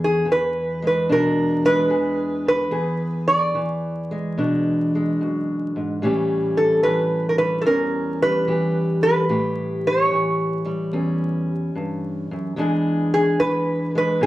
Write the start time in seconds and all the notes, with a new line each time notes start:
Already playing: E2 E3 G#3 G#4
0.04 G#4
0.25 E3
0.32 B4
0.82 G#3
0.87 B4
1.09 B2 D4 A#4
1.65 G#3 B4
1.90 E3 G#4
2.48 B4
2.71 E2 G#4
3.28 D5
3.55 E3
4.11 G#3
4.37 B2 D4
4.95 G#3
5.21 F#2
5.76 G#2
6.02 A2 E3 G3 C#4 G4
6.57 A4
6.83 E3 B4
7.29 A#4
7.38 G3 B4
7.62 A4
7.66 E2 C#4 A#4
8.22 G3 B4
8.47 E3 G4
9.03 B4
9.29 A2 G4
9.87 C#5
10.11 E3
10.65 G3
10.93 E2 C#4
11.75 G2
12.31 F#2
12.56 E2 E3 G#3 D4 G#4
13.14 G#4
13.40 E3 B4
13.95 G#3 B4
14.21 B2 D4 A#4